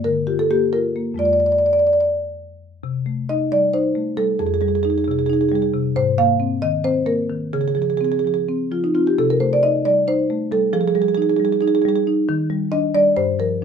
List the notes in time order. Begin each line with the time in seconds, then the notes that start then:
Already playing: G2 A#3
0.04 D3 A#4
0.27 F4 G4
0.39 A4
0.51 A#3 G4
0.73 F4 A#4
0.96 A#3
1.14 F2 G#3 F4
1.19 D5
1.25 D5
1.33 D5
1.40 D5
1.46 D5
1.52 D5
1.59 D5
1.66 D5
1.73 D5
1.79 D5
1.87 D5
1.93 D5
2.01 D5
2.83 C3
3.06 A3
3.29 D#4 D#5
3.52 G3 D5
3.74 D#4 C5
3.95 A3
4.17 G3 A4
4.39 F2 G#4
4.47 G#4
4.54 G#4
4.61 G3 G#4
4.68 G#4
4.75 G#4
4.83 D#4 G#4
4.90 G#4
4.98 G#4
5.04 C3 G#4
5.11 G#4
5.19 G#4
5.26 D#4 G#4
5.33 G#4
5.41 G#4
5.49 G3 G#4
5.55 G#4
5.62 G#4
5.74 C3
5.96 G#2 C5
6.18 A#3 F5
6.40 C4
6.62 D#3 D#5
6.84 C4 C5
7.06 A#3 A#4
7.30 D#3
7.53 C#3 G#4
7.61 G#4
7.68 G#4
7.75 F3 G#4
7.82 G#4
7.90 G#4
7.97 C4 G#4
8.05 G#4
8.12 G#4
8.19 G#4
8.25 F3 G#4
8.34 G#4
8.48 C4
8.71 F3 F4
8.84 D#4
8.95 C4 F4
9.07 G4
9.19 C3 A4
9.30 A#4
9.40 A3 C5
9.53 D5
9.63 D#4 D#5
9.85 G3 D5
10.08 D#4 C5
10.30 A3
10.52 G3 A4
10.73 F3 G#4
10.81 G#4
10.88 G#4
10.95 G3 G#4
11.02 G#4
11.08 G#4
11.14 D#4 G#4
11.22 G#4
11.30 G#4
11.37 G3 G#4
11.45 G#4
11.53 G#4
11.61 D#4 G#4
11.68 G#4
11.75 G#4
11.82 G3 G#4
11.89 G#4
11.96 G#4
12.07 D#4
12.29 D#3
12.50 G3
12.72 D4 D#5
12.95 G3 D5
13.16 G2 C5
13.39 F3 A#4